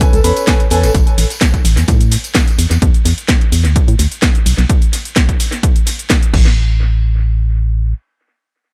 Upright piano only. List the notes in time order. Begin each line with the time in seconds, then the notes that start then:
0.01 C#4 A4 B4 G#5
0.24 C#4 A4 B4 B5
0.48 C#4 A4 B4 G#5
0.71 C#4 A4 B4 G#5